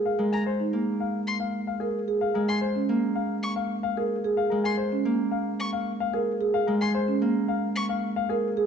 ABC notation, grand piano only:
X:1
M:4/4
L:1/16
Q:1/4=111
K:Bbm
V:1 name="Grand piano"
f B a c z3 f z2 f z f A z2 | f B a c z3 f z2 f z f A z2 | f B a c z3 f z2 f z f A z2 | f B a c z3 f z2 f z f A z2 |]